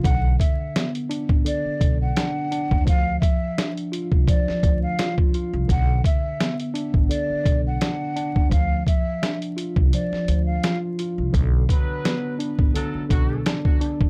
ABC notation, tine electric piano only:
X:1
M:4/4
L:1/8
Q:"Swing 16ths" 1/4=85
K:Bm
V:1 name="Tine electric piano"
D,2 B, D D, D, D D | =F,2 D =F F, F, F F | D,2 B, D D, D, D D | =F,2 D =F F, F, F F |
D,2 B, D D, D, D D |]